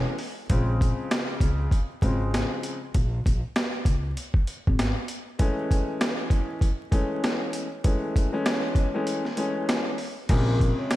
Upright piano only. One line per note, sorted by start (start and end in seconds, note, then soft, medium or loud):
0.00 0.15 E3 medium
0.00 0.15 G#3 medium
0.00 0.15 A3 medium
0.00 0.15 C#4 loud
0.49 1.77 C#3 medium
0.49 1.77 F3 medium
0.49 1.78 G#3 medium
0.49 1.78 C4 loud
2.02 2.74 C#3 medium
2.02 2.75 F3 medium
2.02 2.75 G#3 medium
2.02 2.75 C4 medium
5.39 6.67 E3 medium
5.39 6.67 G#3 medium
5.39 6.67 A3 medium
5.39 6.67 C#4 loud
6.91 7.64 E3 medium
6.91 7.64 G#3 medium
6.91 7.65 A3 medium
6.91 7.65 C#4 loud
7.84 8.29 E3 loud
7.84 8.29 G#3 medium
7.84 8.29 A3 medium
7.84 8.29 C#4 medium
8.32 8.88 E3 medium
8.32 8.88 G#3 medium
8.32 8.89 A3 medium
8.32 8.89 C#4 loud
8.94 9.22 E3 medium
8.94 9.22 G#3 medium
8.94 9.22 A3 medium
8.94 9.23 C#4 loud
9.36 9.94 E3 medium
9.36 9.94 G#3 medium
9.36 9.95 A3 medium
9.36 9.95 C#4 loud
10.29 10.96 C3 loud
10.29 10.96 C#3 medium
10.29 10.96 F3 medium
10.29 10.96 G#3 medium